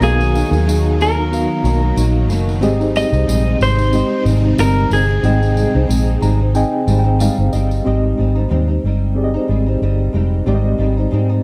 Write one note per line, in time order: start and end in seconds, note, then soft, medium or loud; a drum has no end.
0.00 0.41 B1 loud
0.00 0.19 B2 medium
0.00 2.59 D#3 medium
0.00 2.59 F#3 medium
0.00 0.20 F#3 medium
0.00 0.19 A#3 medium
0.00 1.31 B3 medium
0.00 0.02 D#4 medium
0.00 2.59 D#4 medium
0.00 0.95 D#4 medium
0.00 0.18 D#4 medium
0.00 0.02 F#4 medium
0.00 0.95 F#4 medium
0.00 1.03 G#4 loud
0.00 0.95 A#4 medium
0.00 2.64 D#5 medium
0.00 0.96 F5 medium
0.00 2.65 A#5 medium
0.00 tambourine soft
0.19 0.33 F#3 soft
0.19 0.34 A#3 soft
0.19 0.34 D#4 medium
0.19 tambourine soft
0.33 0.52 B2 medium
0.33 0.53 F#3 medium
0.33 0.52 A#3 medium
0.33 0.50 D#4 medium
0.33 tambourine soft
0.51 1.46 D#2 loud
0.51 0.65 F#3 soft
0.51 0.66 A#3 medium
0.51 0.67 D#4 medium
0.51 tambourine soft
0.66 0.97 B2 medium
0.66 0.98 F#3 medium
0.66 0.99 A#3 medium
0.66 1.00 D#4 medium
0.66 tambourine medium
0.98 1.17 B2 medium
0.98 1.18 F#3 medium
0.98 1.16 A#3 medium
0.98 1.15 D#4 medium
0.98 2.27 A#4 loud
0.98 tambourine soft
1.16 1.63 F#3 soft
1.16 1.64 A#3 soft
1.16 1.64 D#4 medium
1.31 2.25 B3 medium
1.31 2.25 D#4 medium
1.31 2.25 F#4 medium
1.31 2.26 A#4 medium
1.31 2.26 F5 medium
1.31 tambourine medium
1.63 1.90 B1 loud
1.63 1.82 B2 medium
1.63 1.82 F#3 medium
1.63 1.81 A#3 medium
1.63 1.79 D#4 medium
1.63 tambourine soft
1.80 1.95 F#3 medium
1.80 1.96 A#3 medium
1.80 1.96 D#4 medium
1.96 2.29 A#1 loud
1.96 2.29 F#3 loud
1.96 2.30 A#3 loud
1.96 2.30 D#4 loud
1.96 tambourine medium
2.28 2.62 F#1 medium
2.28 2.62 B2 medium
2.28 2.61 F#3 medium
2.28 2.62 A#3 medium
2.28 2.62 D#4 medium
2.28 tambourine medium
2.49 tambourine soft
2.61 3.03 G#1 loud
2.61 2.80 G#2 medium
2.61 7.81 C3 medium
2.61 2.80 G3 loud
2.61 3.55 C4 loud
2.61 7.81 C4 medium
2.61 2.80 C4 loud
2.61 3.55 D#4 medium
2.61 7.81 D#4 loud
2.61 2.78 D#4 loud
2.61 3.56 G4 loud
2.61 3.56 G#4 loud
2.61 3.56 D#5 loud
2.61 tambourine soft
2.80 2.94 G3 medium
2.80 2.95 C4 medium
2.80 2.95 D#4 medium
2.80 tambourine soft
2.93 3.12 G#2 medium
2.93 3.13 G3 medium
2.93 3.12 C4 medium
2.93 3.11 D#4 medium
2.93 3.57 D#5 loud
2.93 tambourine medium
3.12 3.25 C2 loud
3.12 3.26 G3 medium
3.12 3.27 C4 medium
3.12 3.27 D#4 medium
3.12 tambourine soft
3.27 3.54 A#1 medium
3.27 3.59 G#2 medium
3.27 3.60 G3 medium
3.27 3.61 C4 medium
3.27 3.61 D#4 medium
3.27 tambourine medium
3.60 4.01 G#1 medium
3.60 3.78 G#2 medium
3.60 3.79 G3 medium
3.60 3.78 C4 medium
3.60 3.76 D#4 medium
3.60 4.23 C5 loud
3.60 tambourine medium
3.78 4.26 G3 soft
3.78 4.26 C4 soft
3.78 4.25 D#4 medium
3.78 tambourine soft
3.93 4.87 G#3 medium
3.93 4.86 C4 medium
3.93 4.86 D#4 medium
3.93 4.87 G4 medium
3.93 4.87 D#5 medium
3.93 tambourine medium
4.25 4.52 G#1 loud
4.25 4.44 G#2 medium
4.25 4.45 G3 medium
4.25 4.45 C4 medium
4.25 tambourine soft
4.29 4.43 D#4 medium
4.44 4.58 G3 soft
4.44 4.59 C4 medium
4.44 4.59 D#4 medium
4.58 4.85 G1 loud
4.58 4.91 G3 medium
4.58 4.92 C4 medium
4.58 4.92 D#4 medium
4.58 4.90 A#4 loud
4.58 tambourine medium
4.91 5.17 G1 medium
4.91 5.23 C4 medium
4.91 5.24 D#4 medium
4.91 7.17 G#4 loud
4.91 tambourine soft
5.23 5.64 G#1 loud
5.23 5.41 G#2 medium
5.23 5.42 G3 medium
5.23 6.16 C4 medium
5.23 5.42 C4 medium
5.23 6.17 D#4 medium
5.23 5.40 D#4 medium
5.23 6.17 G#4 medium
5.23 6.18 D#5 loud
5.23 6.17 G5 medium
5.23 tambourine soft
5.41 5.55 G3 soft
5.41 5.56 C4 medium
5.41 5.56 D#4 medium
5.41 tambourine soft
5.56 5.74 G#2 medium
5.56 5.74 G3 medium
5.56 5.74 C4 medium
5.56 5.73 D#4 medium
5.56 tambourine soft
5.74 5.86 C2 medium
5.74 5.90 G3 medium
5.74 5.88 C4 medium
5.74 5.88 D#4 medium
5.87 6.15 A#1 medium
5.87 6.19 G#2 medium
5.87 6.21 C4 medium
5.87 6.22 D#4 loud
5.87 tambourine medium
6.21 6.62 G#1 medium
6.21 6.39 G#2 medium
6.21 6.40 G3 medium
6.21 6.40 C4 medium
6.21 6.38 D#4 medium
6.21 6.52 A#5 medium
6.21 tambourine medium
6.40 6.88 C4 medium
6.40 6.87 D#4 medium
6.54 7.47 C4 loud
6.54 7.48 D#4 medium
6.54 7.48 G#4 medium
6.54 7.48 D#5 loud
6.54 6.98 G5 medium
6.54 6.95 G#5 medium
6.54 tambourine medium
6.87 7.28 G#1 loud
6.87 7.05 G#2 medium
6.87 7.05 G3 medium
6.87 7.04 C4 medium
6.87 7.03 D#4 medium
6.87 tambourine soft
6.99 7.19 G5 medium
7.04 7.19 G3 soft
7.04 7.19 C4 medium
7.04 7.19 D#4 medium
7.19 7.37 G#2 medium
7.19 7.38 G3 medium
7.19 7.38 C4 loud
7.19 7.36 D#4 loud
7.19 7.50 F5 medium
7.19 tambourine medium
7.37 7.50 G1 loud
7.37 7.52 G3 soft
7.37 7.53 C4 medium
7.37 7.52 D#4 medium
7.53 7.79 G1 medium
7.53 7.85 G3 medium
7.53 7.85 C4 medium
7.53 7.86 D#4 medium
7.53 7.83 D#5 medium
7.53 tambourine medium
7.71 tambourine soft
7.85 8.12 G#1 medium
7.85 8.16 G#2 medium
7.85 8.17 G3 medium
7.85 8.79 G#3 medium
7.85 8.78 C4 medium
7.85 8.18 C4 medium
7.85 8.19 D#4 medium
7.85 8.78 G4 medium
7.85 8.79 D#5 medium
8.18 8.45 G#1 medium
8.18 8.36 G#2 medium
8.18 8.36 G3 medium
8.18 8.35 C4 medium
8.18 8.34 D#4 medium
8.35 8.49 G3 soft
8.35 8.50 C4 soft
8.35 8.50 D#4 medium
8.49 8.77 D#2 medium
8.49 8.68 G#2 medium
8.49 8.68 G3 medium
8.49 8.68 C4 medium
8.49 8.66 D#4 medium
8.68 8.84 G3 soft
8.68 8.83 C4 soft
8.68 8.83 D#4 soft
8.84 9.36 G1 medium
8.84 9.35 G3 medium
8.84 9.35 C4 medium
8.84 9.33 D#4 medium
9.15 10.08 C4 medium
9.15 10.09 G4 medium
9.15 10.09 G#4 medium
9.15 9.24 D5 medium
9.24 10.13 D#5 medium
9.34 9.48 G3 soft
9.34 9.49 C4 medium
9.34 9.48 D#4 medium
9.48 9.75 G#1 medium
9.48 9.66 G#2 medium
9.48 9.67 G3 medium
9.48 9.67 C4 medium
9.48 9.65 D#4 medium
9.66 9.81 G3 soft
9.66 9.82 C4 soft
9.66 9.81 D#4 medium
9.82 10.07 G1 medium
9.82 10.13 G3 medium
9.82 10.14 C4 medium
9.82 10.15 D#4 medium
10.13 10.40 F1 medium
10.13 10.45 G#2 medium
10.13 10.45 G3 medium
10.13 10.46 C4 medium
10.13 10.47 D#4 medium
10.46 10.73 G#1 medium
10.46 10.77 G#2 medium
10.46 10.78 G3 medium
10.46 11.40 G#3 medium
10.46 11.39 C4 medium
10.46 10.79 C4 medium
10.46 10.80 D#4 medium
10.46 11.40 G4 medium
10.46 10.55 D5 medium
10.55 11.43 D#5 loud
10.78 11.05 G#1 medium
10.78 10.97 G#2 medium
10.78 10.97 G3 medium
10.78 10.97 C4 medium
10.78 10.96 D#4 medium
10.97 11.11 G3 soft
10.97 11.12 C4 medium
10.97 11.12 D#4 medium
11.11 11.29 G#2 medium
11.11 11.38 G#2 medium
11.11 11.30 G3 medium
11.11 11.30 C4 medium
11.11 11.28 D#4 medium
11.29 11.43 G3 soft
11.29 11.43 C4 soft
11.29 11.43 D#4 medium